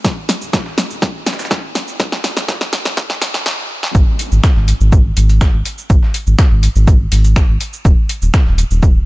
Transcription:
0.05 0.14 D#1 loud
0.05 kick loud
0.05 snare medium
0.05 shaker medium
0.29 snare medium
0.29 open hi-hat loud
0.29 shaker medium
0.42 0.50 D#1 medium
0.42 shaker medium
0.53 kick loud
0.53 snare loud
0.53 snare medium
0.53 shaker medium
0.66 0.83 D#1 loud
0.66 snare soft
0.78 snare medium
0.78 open hi-hat medium
0.78 shaker medium
0.90 1.21 D#1 loud
0.90 shaker medium
1.02 kick loud
1.02 snare medium
1.02 shaker medium
1.26 1.58 D#1 loud
1.26 snare medium
1.26 open hi-hat loud
1.26 shaker medium
1.33 snare medium
1.33 shaker medium
1.39 snare medium
1.39 shaker medium
1.45 snare medium
1.45 shaker medium
1.51 kick loud
1.51 snare medium
1.51 snare loud
1.51 shaker medium
1.63 1.72 D#1 medium
1.75 snare medium
1.75 open hi-hat loud
1.75 shaker medium
1.88 shaker medium
2.00 2.09 D#1 loud
2.00 kick loud
2.00 snare medium
2.00 shaker medium
2.12 snare soft
2.12 snare medium
2.24 snare medium
2.24 open hi-hat loud
2.24 shaker medium
2.37 2.45 D#1 medium
2.37 snare medium
2.37 shaker medium
2.48 kick loud
2.48 snare medium
2.48 snare loud
2.48 shaker medium
2.61 2.78 D#1 loud
2.61 snare medium
2.61 snare soft
2.73 snare loud
2.73 open hi-hat medium
2.73 shaker medium
2.85 3.16 D#1 loud
2.85 snare medium
2.85 shaker medium
2.97 kick loud
2.97 snare loud
2.97 shaker medium
3.10 snare medium
3.22 3.31 A#1 loud
3.22 snare loud
3.22 open hi-hat loud
3.22 open hi-hat medium
3.22 shaker medium
3.34 snare medium
3.34 closed hi-hat soft
3.34 shaker medium
3.46 snare loud
3.83 snare medium
3.95 4.04 G#1 loud
3.95 kick loud
3.95 shaker medium
4.19 open hi-hat loud
4.19 shaker medium
4.32 4.40 G#1 medium
4.32 shaker medium
4.44 finger snap loud
4.44 kick loud
4.44 snare loud
4.44 shaker medium
4.56 4.73 G#1 loud
4.56 snare soft
4.68 open hi-hat medium
4.68 shaker medium
4.81 5.11 G#1 loud
4.81 shaker medium
4.92 kick loud
4.92 shaker medium
5.17 5.48 G#1 loud
5.17 open hi-hat loud
5.17 shaker medium
5.29 closed hi-hat soft
5.29 shaker medium
5.41 finger snap loud
5.41 kick loud
5.41 snare loud
5.41 shaker medium
5.54 5.62 G#1 medium
5.65 open hi-hat loud
5.65 shaker medium
5.78 shaker medium
5.90 5.99 G#1 loud
5.90 kick loud
5.90 shaker medium
6.03 snare soft
6.14 open hi-hat loud
6.14 shaker medium
6.27 6.35 G#1 medium
6.27 shaker medium
6.39 finger snap loud
6.39 kick loud
6.39 snare loud
6.39 shaker medium
6.51 6.68 G#1 loud
6.63 open hi-hat medium
6.63 shaker medium
6.76 7.06 G#1 loud
6.76 shaker medium
6.87 kick loud
6.87 shaker medium
7.12 7.43 G#1 loud
7.12 open hi-hat loud
7.12 open hi-hat medium
7.12 shaker medium
7.24 closed hi-hat soft
7.24 shaker medium
7.36 finger snap loud
7.36 kick loud
7.36 snare loud
7.36 shaker medium
7.49 7.57 G#1 medium
7.61 open hi-hat loud
7.61 shaker medium
7.73 shaker medium
7.85 7.94 D#1 loud
7.85 kick loud
7.85 shaker medium
8.09 open hi-hat loud
8.09 shaker medium
8.22 8.30 D#1 medium
8.22 shaker medium
8.34 finger snap loud
8.34 kick loud
8.34 snare loud
8.34 shaker medium
8.46 8.64 D#1 loud
8.46 snare soft
8.58 open hi-hat medium
8.58 shaker medium
8.71 9.02 D#1 loud
8.71 shaker medium
8.83 kick loud
8.83 shaker medium

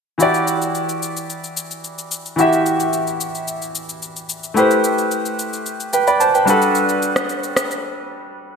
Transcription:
0.18 2.33 E3 medium
0.18 2.34 E4 medium
0.18 2.34 F#4 medium
0.18 2.35 G4 medium
0.18 shaker medium
0.22 2.36 D5 medium
0.34 shaker soft
0.48 shaker medium
0.62 shaker medium
0.75 shaker medium
0.89 shaker soft
1.02 shaker medium
1.17 shaker medium
1.30 shaker medium
1.44 shaker soft
1.57 shaker medium
1.71 shaker medium
1.84 shaker medium
1.98 shaker medium
2.11 shaker medium
2.26 shaker medium
2.36 4.51 E3 medium
2.36 4.52 E4 medium
2.36 4.53 F#4 medium
2.36 4.53 G4 medium
2.36 shaker medium
2.41 4.54 E5 medium
2.53 shaker soft
2.66 shaker medium
2.80 shaker medium
2.93 shaker medium
3.07 shaker soft
3.21 shaker medium
3.35 shaker medium
3.48 shaker medium
3.62 shaker soft
3.75 shaker loud
3.89 shaker medium
4.02 shaker medium
4.16 shaker medium
4.29 shaker medium
4.43 shaker medium
4.54 6.42 A3 medium
4.54 6.43 E4 medium
4.54 6.44 G4 medium
4.54 5.91 B4 medium
4.54 shaker medium
4.59 5.91 C5 medium
4.71 shaker soft
4.84 shaker medium
4.98 shaker soft
5.11 shaker medium
5.26 shaker soft
5.39 shaker medium
5.53 shaker medium
5.66 shaker medium
5.80 shaker soft
5.93 6.07 B4 medium
5.93 6.06 G5 medium
5.93 shaker medium
6.07 6.20 D5 medium
6.07 6.20 B5 medium
6.07 shaker medium
6.20 6.34 C5 medium
6.20 6.34 A5 medium
6.20 shaker medium
6.34 6.48 B4 medium
6.34 6.60 G5 medium
6.34 shaker medium
6.45 8.56 G3 medium
6.45 8.56 D4 medium
6.45 8.56 F#4 medium
6.45 8.56 A4 medium
6.45 shaker medium
6.50 8.56 B4 medium
6.62 shaker medium
6.75 shaker medium
6.89 shaker soft
7.02 shaker medium
7.16 cross-stick medium
7.16 shaker medium
7.29 shaker medium
7.43 shaker soft
7.57 cross-stick medium
7.57 shaker medium
7.71 shaker medium

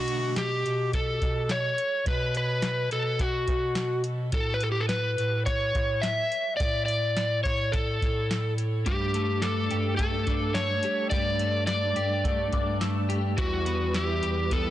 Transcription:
0.00 0.61 B2 medium
0.00 0.32 F#3 loud
0.00 0.32 A3 medium
0.00 0.32 D4 medium
0.00 0.36 D4 medium
0.00 0.32 F#4 medium
0.00 0.36 F#4 medium
0.00 0.37 F#4 medium
0.08 closed hi-hat medium
0.36 0.94 G4 medium
0.36 snare loud
0.36 closed hi-hat medium
0.66 1.19 B2 medium
0.66 closed hi-hat soft
0.93 1.52 A4 medium
0.93 kick medium
0.93 closed hi-hat medium
1.21 1.75 B2 medium
1.21 kick medium
1.21 closed hi-hat soft
1.49 2.07 C#5 medium
1.49 snare medium
1.49 closed hi-hat medium
1.78 closed hi-hat soft
2.06 2.87 B2 loud
2.06 2.36 B4 medium
2.06 kick loud
2.06 closed hi-hat medium
2.35 2.89 B4 medium
2.35 closed hi-hat medium
2.62 snare loud
2.62 closed hi-hat medium
2.91 3.45 B2 medium
2.91 3.21 A4 medium
2.91 closed hi-hat soft
3.19 4.01 F#4 medium
3.19 kick medium
3.19 closed hi-hat medium
3.48 4.29 B2 medium
3.48 kick medium
3.48 closed hi-hat soft
3.75 snare loud
3.75 closed hi-hat soft
4.04 closed hi-hat soft
4.32 5.13 A2 medium
4.32 4.52 A4 medium
4.32 kick loud
4.32 closed hi-hat medium
4.54 4.63 B4 medium
4.61 4.71 A4 medium
4.61 closed hi-hat medium
4.72 4.81 G4 medium
4.81 4.88 A4 medium
4.89 5.46 B4 medium
4.89 snare loud
4.89 closed hi-hat medium
5.18 5.72 A2 medium
5.18 closed hi-hat soft
5.46 6.04 C#5 medium
5.46 kick medium
5.46 closed hi-hat medium
5.75 6.28 A2 medium
5.75 kick medium
5.75 closed hi-hat soft
6.02 6.55 E5 medium
6.02 snare loud
6.02 closed hi-hat medium
6.32 closed hi-hat soft
6.57 7.41 A2 medium
6.57 6.84 D5 medium
6.57 kick medium
6.57 closed hi-hat medium
6.86 7.43 D5 medium
6.86 closed hi-hat medium
7.17 snare loud
7.17 closed hi-hat medium
7.43 7.98 A2 medium
7.43 7.73 C#5 medium
7.43 kick medium
7.43 closed hi-hat soft
7.72 8.53 A4 medium
7.72 kick medium
7.72 closed hi-hat medium
8.02 8.82 A2 medium
8.02 kick medium
8.02 closed hi-hat soft
8.31 snare medium
8.31 closed hi-hat soft
8.58 closed hi-hat soft
8.85 9.67 G2 loud
8.85 13.35 G3 medium
8.85 11.13 G3 medium
8.85 13.35 A3 soft
8.85 13.34 D4 medium
8.85 9.45 G4 medium
8.85 kick medium
8.85 closed hi-hat medium
9.14 9.98 A3 medium
9.14 closed hi-hat medium
9.42 10.26 D4 medium
9.42 9.96 A4 medium
9.42 snare medium
9.42 closed hi-hat medium
9.70 10.24 G2 medium
9.70 10.84 G4 medium
9.70 closed hi-hat soft
9.97 10.55 A3 medium
9.97 10.56 A4 medium
9.97 kick medium
9.97 closed hi-hat medium
10.27 10.81 G2 medium
10.27 11.67 D4 soft
10.27 kick medium
10.27 closed hi-hat soft
10.54 11.40 A3 soft
10.54 11.10 C#5 medium
10.54 snare loud
10.54 closed hi-hat medium
10.83 11.96 G4 medium
10.83 closed hi-hat soft
11.10 11.92 G2 loud
11.10 13.36 G3 medium
11.10 11.66 D5 loud
11.10 kick loud
11.10 closed hi-hat medium
11.39 12.23 A3 medium
11.39 closed hi-hat soft
11.67 12.52 D4 medium
11.67 12.77 D5 medium
11.67 snare loud
11.67 closed hi-hat medium
11.96 12.50 G2 medium
11.96 13.09 G4 medium
11.96 closed hi-hat soft
12.24 12.80 A3 medium
12.24 kick medium
12.24 closed hi-hat medium
12.53 13.34 G2 medium
12.53 13.44 D4 medium
12.53 kick medium
12.53 closed hi-hat soft
12.81 13.44 A3 medium
12.81 snare loud
12.81 closed hi-hat medium
13.09 14.23 G4 medium
13.09 closed hi-hat soft
13.37 14.19 E2 loud
13.37 14.70 E3 medium
13.37 14.70 G3 medium
13.37 14.70 E4 soft
13.37 13.96 F#4 medium
13.37 14.70 B4 medium
13.37 kick loud
13.37 closed hi-hat medium
13.66 14.51 B3 medium
13.66 closed hi-hat medium
13.94 14.70 E4 medium
13.94 14.54 G4 medium
13.94 snare loud
13.94 closed hi-hat medium
14.22 14.70 E2 medium
14.22 14.70 G4 medium
14.22 closed hi-hat soft
14.51 14.70 B3 medium
14.51 14.70 A4 medium
14.51 kick medium
14.51 closed hi-hat medium

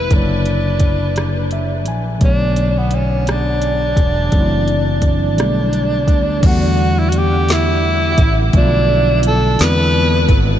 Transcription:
0.00 0.13 G3 medium
0.00 0.13 A3 medium
0.00 0.13 B3 medium
0.00 0.13 E4 medium
0.00 0.15 B4 loud
0.09 1.89 F#1 medium
0.09 2.17 D3 medium
0.09 2.18 F#3 soft
0.09 kick medium
0.09 closed hi-hat medium
0.13 2.19 A#3 soft
0.13 1.88 D4 medium
0.13 2.21 E4 medium
0.13 2.20 C#5 soft
0.46 closed hi-hat soft
0.80 kick medium
0.80 closed hi-hat medium
1.16 cross-stick loud
1.16 closed hi-hat medium
1.51 1.85 E5 medium
1.51 closed hi-hat soft
1.86 2.19 A#1 medium
1.86 2.20 G#5 medium
1.86 closed hi-hat medium
2.19 3.94 B1 medium
2.19 4.27 D3 medium
2.19 4.28 F#3 soft
2.19 kick loud
2.19 closed hi-hat medium
2.23 4.29 A3 medium
2.23 4.30 B3 soft
2.23 2.79 D4 medium
2.27 4.31 C#5 medium
2.56 closed hi-hat soft
2.78 2.96 B3 medium
2.91 3.33 C#4 medium
2.91 closed hi-hat medium
3.27 cross-stick loud
3.27 closed hi-hat medium
3.31 5.05 D4 medium
3.62 closed hi-hat soft
3.97 4.29 E1 medium
3.97 kick medium
3.97 closed hi-hat medium
4.31 5.39 F#1 medium
4.31 5.37 E3 medium
4.31 5.38 F#3 medium
4.31 5.38 A3 medium
4.31 5.39 C4 medium
4.31 kick loud
4.31 closed hi-hat medium
4.36 4.41 D#4 medium
4.42 5.43 E4 medium
4.68 closed hi-hat soft
5.02 kick medium
5.02 closed hi-hat medium
5.06 6.47 D4 medium
5.37 6.08 B1 medium
5.37 6.39 D3 medium
5.37 6.41 G3 medium
5.37 6.44 A3 medium
5.37 6.44 B3 medium
5.37 cross-stick loud
5.37 closed hi-hat medium
5.41 6.45 D4 medium
5.73 closed hi-hat soft
6.08 6.40 D2 medium
6.08 kick medium
6.08 closed hi-hat medium
6.40 8.15 E2 medium
6.40 8.48 D3 medium
6.40 8.49 G3 medium
6.40 kick loud
6.40 closed hi-hat medium
6.40 crash medium
6.45 8.50 A3 medium
6.45 8.51 B3 medium
6.45 7.00 F#4 medium
6.49 8.52 F#5 medium
6.99 7.11 E4 medium
7.09 7.19 F#4 medium
7.09 closed hi-hat medium
7.17 7.54 G4 loud
7.49 8.40 E4 loud
7.49 snare loud
7.49 closed hi-hat medium
8.18 8.50 A1 medium
8.18 kick medium
8.18 closed hi-hat medium
8.53 9.55 B1 loud
8.53 9.57 D3 medium
8.53 9.59 F3 medium
8.53 9.60 A3 medium
8.53 9.59 B3 medium
8.53 9.21 D4 loud
8.53 kick loud
8.53 closed hi-hat medium
8.58 9.61 F4 medium
9.23 closed hi-hat medium
9.27 9.64 A4 loud
9.58 10.26 E2 loud
9.58 10.59 D3 medium
9.58 10.59 G#3 medium
9.58 10.59 B3 medium
9.58 10.59 C4 medium
9.58 10.39 B4 loud
9.58 snare loud
9.58 closed hi-hat medium
9.63 10.59 E4 medium
10.29 10.59 G#1 medium
10.29 kick medium
10.29 closed hi-hat medium

